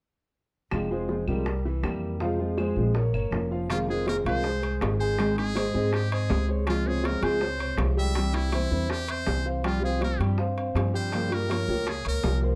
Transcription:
0.71 upright bass F1, nylon-string guitar C3 F3 G#3 C4 F4, high bongo, claves
0.91 nylon-string guitar F3 G#3 C4 F4, grand piano G#3 G#4 C5
1.09 nylon-string guitar F3 G#3 C4 F4, high bongo
1.28 upright bass C2, nylon-string guitar F3 G#3 C4 F4, grand piano G3 G4 A#4, claves
1.46 muted nylon-string guitar stroke, high bongo
1.65 grand piano E3 E4 E5
1.83 upright bass F2, nylon-string guitar E3 A#3 C4 E4, grand piano G3 G4 A#4, high bongo, low bongo, claves
2.20 nylon-string guitar C3 F3 G#3 C4 F4, grand piano F3 F4 F5, high bongo
2.39 nylon-string guitar F3 G#3 C4 F4, high bongo
2.58 nylon-string guitar F3 G#3 C4 F4, grand piano G#3 G#4 C5, high bongo, claves
2.76 upright bass A#1, nylon-string guitar F3 G#3 C4 F4, high bongo
2.95 grand piano A#3 A#4 C#5, muted nylon-string guitar stroke, high bongo
3.13 upright bass G1, grand piano A#3 A#4 C#5, claves
3.31 upright bass F1, nylon-string guitar F3 A#3 C#4 F4, high bongo, low bongo
3.51 grand piano F3 F4 F5, high bongo
3.69 nylon-string guitar C3 D#3 G#3 C4 F4, grand piano F3 F4 F5, muted trumpet F4, high bongo, high timbale
3.88 nylon-string guitar D#3 G#3 C4 F4, grand piano G#3 G#4 C5, muted trumpet G#4
4.07 nylon-string guitar D#3 G#3 C4 F4, muted trumpet A#4, high bongo, high timbale, low timbale
4.25 upright bass C2, nylon-string guitar D#3 G#3 C4 F4, grand piano F3 F4 F5, muted trumpet C5, high timbale
4.44 grand piano G#3 G#4 C5, muted nylon-string guitar stroke, high bongo
4.62 grand piano G#3 G#4 C5, high timbale
4.81 upright bass G#1, nylon-string guitar D#3 G#3 C4 F4, high bongo, low bongo, high timbale, low timbale
5.00 grand piano G#3 G#4 G#5, muted trumpet C5
5.18 nylon-string guitar D#3 G#3 C4 D#4 G#4, grand piano G#3 G#4 G#5, high bongo, high timbale
5.37 nylon-string guitar G#3 C4 D#4 G#4, muted trumpet G#4, high bongo, high timbale
5.55 nylon-string guitar G#3 C4 D#4 G#4, grand piano C4 C5 D#5, high bongo, high timbale, low timbale
5.74 upright bass G#2, nylon-string guitar G#3 C4 D#4 G#4, grand piano C4 C5 D#5, high bongo
5.93 muted trumpet G4, muted nylon-string guitar stroke, high bongo, high timbale
6.11 grand piano C4 C5 D#5, muted trumpet G#4, high timbale
6.30 upright bass C#2, nylon-string guitar G#3 C4 D#4 G#4, high bongo, low bongo, low timbale
6.48 grand piano C4 C5 C#5, high bongo
6.67 nylon-string guitar C#3 F3 G#3 C4 F4, grand piano G#3 G#4 G#5, muted trumpet F4, high bongo, high timbale
6.86 grand piano C3 C5 C#5, nylon-string guitar F3 G#3 C4 F4, muted trumpet G#4
7.04 nylon-string guitar F3 G#3 C4 F4, muted trumpet A#4, high bongo, high timbale, low timbale
7.22 upright bass C#2, nylon-string guitar F3 G#3 C4 F4, grand piano G#3 G#4 G#5, muted trumpet C5, high timbale
7.41 grand piano C4 C5 C#5, muted nylon-string guitar stroke, high bongo
7.59 grand piano C3 C5 C#5, high timbale
7.78 upright bass C2, nylon-string guitar F3 G#3 C4 F4, high bongo, low bongo, high timbale, low timbale
7.97 grand piano G3 G4 G5, muted trumpet E5
8.15 nylon-string guitar C3 E3 G3 C4 E4, grand piano G3 G4 G5, high bongo, high timbale
8.34 nylon-string guitar E3 G3 C4 E4, muted trumpet E4, high bongo, high timbale
8.52 nylon-string guitar E3 G3 C4 E4, grand piano C4 C5 E5, high bongo, high timbale, low timbale
8.71 upright bass E2, nylon-string guitar E3 G3 C4 E4, grand piano C4 C5 E5, high bongo
8.90 muted trumpet G4, muted nylon-string guitar stroke, high bongo, high timbale
9.08 grand piano C4 C5 E5, muted trumpet C5, high timbale
9.26 upright bass C2, nylon-string guitar E3 G3 C4 E4, high bongo, low bongo, low timbale
9.46 grand piano C4 C5 F5, high bongo
9.63 nylon-string guitar C3 F3 G3 C4 G4, grand piano G3 G4 G5, muted trumpet F4, high bongo, high timbale
9.81 nylon-string guitar F3 G3 C4 G4, grand piano C4 C5 F5, muted trumpet G#4
10.01 nylon-string guitar F3 G3 C4 G4, muted trumpet A#4, high bongo, high timbale, low timbale
10.20 upright bass G2, nylon-string guitar F3 G3 C4 G4, grand piano G3 G4 G5, high timbale
10.38 grand piano C4 C5 F5, muted nylon-string guitar stroke, high bongo
10.58 grand piano C4 C5 F5, high timbale
10.75 upright bass G2, nylon-string guitar F3 G3 C4 G4, high bongo, low bongo, high timbale, low timbale
10.94 grand piano G3 G4 G5, muted trumpet C5
11.12 nylon-string guitar C#3 F3 A#3 F4 G4, grand piano G3 G4 G5, high bongo, high timbale
11.31 nylon-string guitar F3 A#3 F4 G4, muted trumpet A#4, high bongo, high timbale
11.50 nylon-string guitar F3 A#3 F4 G4, grand piano A#3 A#4 C#5, high bongo, high timbale, low timbale
11.68 upright bass C#2, nylon-string guitar F3 A#3 F4 G4, grand piano A#3 A#4 C#5, high bongo
11.87 muted trumpet G#4, muted nylon-string guitar stroke, high bongo, high timbale
12.05 upright bass C#2, grand piano A#3 A#4 C#5, muted trumpet A#4, high timbale
12.24 upright bass C2, nylon-string guitar F3 A#3 F4 G4, high bongo, low bongo, low timbale
12.42 grand piano A#3 A#4 C5, high bongo

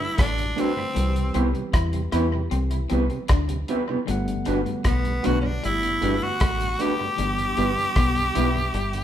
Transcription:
Already playing: tine electric piano D3 G3 A3 F#4 B4, tenor saxophone E4
0.00 tonewheel organ G2
0.18 fingered electric bass A1, clean electric guitar A3, tenor saxophone D4, kick, cross-stick, closed hi-hat
0.38 tonewheel organ G2 D3, closed hi-hat
0.56 clean electric guitar A3 D4 F#4 B4, tonewheel organ A3 B3 F#4, tenor saxophone C4, closed hi-hat
0.76 tonewheel organ G2 D3
0.94 fingered electric bass C2, tine electric piano E3 G3 B4, clean electric guitar C4, closed hi-hat
0.98 tine electric piano C4 F#4
1.07 tine electric piano G4
1.16 tonewheel organ C3 G3, closed hi-hat
1.34 fingered electric bass C2, clean electric guitar B3 C4 E4 G4 B4, tonewheel organ B3 C4 E4, closed hi-hat
1.55 tonewheel organ C3 G3, closed hi-hat
1.73 fingered electric bass E2, clean electric guitar E4, kick, cross-stick, closed hi-hat
1.93 tonewheel organ C3 G3, closed hi-hat
2.12 fingered electric bass E2, clean electric guitar B3 E4 G4 B4, tonewheel organ B3 C4 E4, cross-stick, closed hi-hat
2.34 tonewheel organ C3 G3
2.51 fingered electric bass C2, clean electric guitar C4, closed hi-hat
2.71 tonewheel organ C3 G3, closed hi-hat
2.90 fingered electric bass C2, clean electric guitar B3 C4 E4 G4 B4, tonewheel organ B3 C4 E4, closed hi-hat
3.10 tonewheel organ C3 G3, closed hi-hat
3.28 fingered electric bass D2, clean electric guitar D4, kick, cross-stick, closed hi-hat
3.49 tonewheel organ C3 G3, closed hi-hat
3.68 clean electric guitar B3 E4 G4 B4, tonewheel organ B3 C4 E4, closed hi-hat
3.89 tonewheel organ C3 G3, clean electric guitar B3 E4 G4 B4
4.05 fingered electric bass G1, tine electric piano D3 G3 A3, clean electric guitar G3, closed hi-hat
4.09 tine electric piano B3 F#5
4.28 tonewheel organ G2 D3, closed hi-hat
4.45 fingered electric bass G1, clean electric guitar G3 A3 D4 F#4 B4, tonewheel organ A3 B3 F#4, closed hi-hat
4.66 tonewheel organ G2 D3, closed hi-hat
4.84 fingered electric bass B1, clean electric guitar B3, tenor saxophone B3, kick, cross-stick, closed hi-hat
5.04 tonewheel organ G2 D3, closed hi-hat
5.23 fingered electric bass B1, tonewheel organ A3 B3 F#4, clean electric guitar A3 B3 D4 F#4 B4, tenor saxophone F#4, closed hi-hat
5.41 tonewheel organ G2 D3, tenor saxophone C#4
5.45 tenor saxophone D4
5.63 fingered electric bass G1, clean electric guitar G3, tenor saxophone E4, closed hi-hat
5.82 tonewheel organ G2 D3, closed hi-hat
6.01 fingered electric bass G1, clean electric guitar G3 A3 D4 F#4 B4, tonewheel organ A3 B3 F#4, closed hi-hat
6.21 tonewheel organ G2 D3, tenor saxophone F#4
6.40 fingered electric bass A1, clean electric guitar A3, kick, cross-stick, closed hi-hat
6.60 tonewheel organ G2 D3, closed hi-hat
6.79 tonewheel organ A3 B3 F#4, clean electric guitar A3 D4 F#4 B4, tenor saxophone G4, closed hi-hat
7.00 tonewheel organ G2 D3
7.16 fingered electric bass G1, tine electric piano E3 G3 B3, clean electric guitar G3, closed hi-hat
7.20 tine electric piano D4 G4
7.38 tonewheel organ G2 D3, closed hi-hat
7.56 fingered electric bass G1, tonewheel organ G3 B3 E4, clean electric guitar G3 B3 E4 G4 B4, closed hi-hat
7.78 tonewheel organ G2 D3
7.96 fingered electric bass B1, clean electric guitar B3, kick, cross-stick, closed hi-hat
8.16 tonewheel organ G2 D3, closed hi-hat
8.35 fingered electric bass B1, tonewheel organ G3 B3 E4, clean electric guitar B3 E4 G4 B4, tine electric piano E5, closed hi-hat
8.55 tonewheel organ G2 D3
8.74 fingered electric bass G1, clean electric guitar G3, tine electric piano G5, closed hi-hat
8.93 tonewheel organ G2 D3, closed hi-hat

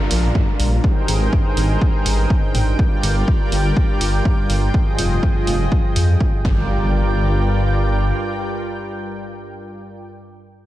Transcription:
Already playing: synth drone G2, analog synth pad D4 F4 A#4, downlifter
0.11 detuned saw bass A#1, open hi-hat
0.35 kick, mid tom
0.60 detuned saw bass A#1, open hi-hat
0.84 analog synth pad D#4 G#4 A#4 C5 G5, kick
1.08 detuned saw bass G#1, open hi-hat
1.33 kick, mid tom
1.57 detuned saw bass G#1, open hi-hat
1.81 kick
2.06 detuned saw bass G#1, open hi-hat
2.30 kick
2.55 detuned saw bass G#1, mid tom, open hi-hat
2.79 analog synth pad G3 F4 A#4 D5, kick
3.03 detuned saw bass G1, open hi-hat
3.28 kick
3.52 detuned saw bass G1, open hi-hat
3.77 kick
4.01 detuned saw bass G1, open hi-hat
4.25 kick, mid tom
4.50 detuned saw bass G1, open hi-hat
4.74 analog synth pad F3 G#4 D#5, kick
4.99 detuned saw bass F1, open hi-hat
5.23 kick, mid tom
5.47 detuned saw bass F1, open hi-hat
5.72 kick
5.96 detuned saw bass F2, open hi-hat
6.20 kick
6.45 detuned saw bass G1, synth drone G2, analog synth pad G3 F4 A#4 D5 G5, kick, impact

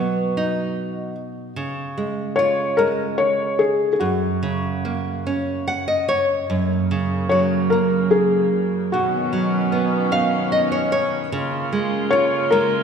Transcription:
Already playing: nylon-string guitar B2 F#3 B3, felt piano F#4
0.37 nylon-string guitar D#4
1.56 nylon-string guitar C#3
1.98 nylon-string guitar G#3
2.36 nylon-string guitar F4, felt piano C#5
2.77 nylon-string guitar G#3, felt piano A#4
3.18 felt piano C#5
3.59 felt piano G#4
3.93 felt piano G#4
4.00 nylon-string guitar F#2, felt piano F#4
4.43 nylon-string guitar C#3
4.85 nylon-string guitar A#3
5.27 nylon-string guitar C#4
5.68 nylon-string guitar F#5
5.88 nylon-string guitar D#5
6.08 nylon-string guitar C#5
6.48 string section F#2 C#3 A#3, nylon-string guitar F#2
6.91 nylon-string guitar C#3
7.29 nylon-string guitar F#3, felt piano C#5
7.70 nylon-string guitar A#3, felt piano A#4
8.11 felt piano G#4
8.92 nylon-string guitar B2, string section D#3 B3 C#4, felt piano F#4
9.33 nylon-string guitar F#3
9.72 nylon-string guitar B3
10.12 nylon-string guitar D#4 F5
10.52 nylon-string guitar D#5
10.72 nylon-string guitar C#5
10.92 nylon-string guitar C#5
11.32 string section C#3 A#3 F4, nylon-string guitar C#3
11.72 nylon-string guitar G#3
12.11 nylon-string guitar F4, felt piano C#5
12.51 nylon-string guitar G#3, felt piano A#4

